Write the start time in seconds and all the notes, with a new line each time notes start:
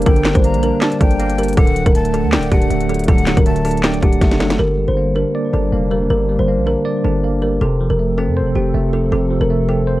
Already playing: D3 G3 A#3 D4 D5
0.02 closed hi-hat
0.06 G1 D3 A#4 G5, kick, closed hi-hat
0.16 closed hi-hat
0.25 G3, snare, clap, closed hi-hat
0.35 G1 C5, kick, closed hi-hat
0.44 A#3 A#5, closed hi-hat
0.54 A#1, closed hi-hat
0.63 D4 A#4, closed hi-hat
0.81 D5 A5, snare, clap, closed hi-hat
0.92 closed hi-hat
1.00 G1 D4 A4 G5, kick, closed hi-hat
1.11 closed hi-hat
1.20 A#3, closed hi-hat
1.30 closed hi-hat
1.38 G3 A#4, closed hi-hat
1.43 closed hi-hat
1.48 closed hi-hat
1.53 closed hi-hat
1.57 D1 D3 A3 A4 F#5, kick, closed hi-hat
1.67 closed hi-hat
1.76 F#3, closed hi-hat
1.86 D1 A#4, kick, closed hi-hat
1.95 A3 A5, closed hi-hat
2.05 closed hi-hat
2.14 D4 A4, closed hi-hat
2.24 D2
2.32 D5 G5, snare, clap, closed hi-hat
2.38 D1
2.43 closed hi-hat
2.52 D1 D4 G4 F#5, kick, closed hi-hat
2.62 closed hi-hat
2.70 D1 A3, closed hi-hat
2.80 closed hi-hat
2.89 F#3 A4, closed hi-hat
2.94 closed hi-hat
2.99 closed hi-hat
3.04 D3, closed hi-hat
3.08 D1 A4 F#5, kick, closed hi-hat
3.18 closed hi-hat
3.27 F#3, snare, clap, closed hi-hat
3.37 D1 A#4, kick, closed hi-hat
3.46 A3 A5, closed hi-hat
3.56 closed hi-hat
3.65 D4 A4, closed hi-hat, open hi-hat
3.71 closed hi-hat
3.77 closed hi-hat
3.83 D5 G5, snare, clap, closed hi-hat
3.94 closed hi-hat
4.02 D1 D4 G4 F#5, kick, closed hi-hat
4.13 closed hi-hat
4.21 F#1 A3, kick, snare, closed hi-hat
4.31 snare, closed hi-hat
4.40 F#3 A4, snare, closed hi-hat
4.50 snare, closed hi-hat
4.59 G1 D3 G3 A#3 D4 A#4
4.77 G3
4.88 G1 C5
4.97 A#3
5.15 D4 A#4
5.35 D5
5.53 G1 D4 A4
5.72 F1 A#3
5.91 G3 A#4
6.10 G1 D3 A#4
6.29 G3
6.39 G1 C5
6.48 A#3
6.58 A#1
6.66 D4 A#4
6.85 D5
7.04 G1 D4 A4
7.24 A#3
7.42 G3 A#4
7.61 F1 C3 F3 C4 A4
7.80 F3
7.90 F1 A#4
7.99 A3
8.18 C4 A4
8.28 F2
8.37 C5
8.42 F1
8.55 F1 C4 G4
8.74 F1 A3
8.93 F3 A4
9.12 F1 C3 A4
9.31 F3
9.41 F1 A#4
9.50 A3
9.69 C4 A4
9.87 C5